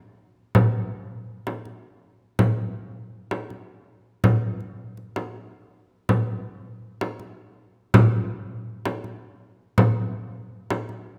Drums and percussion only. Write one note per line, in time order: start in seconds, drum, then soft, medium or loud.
0.55 frame drum soft
1.47 frame drum soft
1.65 frame drum soft
2.39 frame drum soft
3.31 frame drum soft
3.50 frame drum soft
4.24 frame drum soft
4.60 frame drum soft
4.97 frame drum soft
5.16 frame drum soft
6.09 frame drum soft
7.01 frame drum soft
7.19 frame drum soft
7.94 frame drum medium
8.85 frame drum soft
9.04 frame drum soft
9.78 frame drum soft
10.70 frame drum soft
10.89 frame drum soft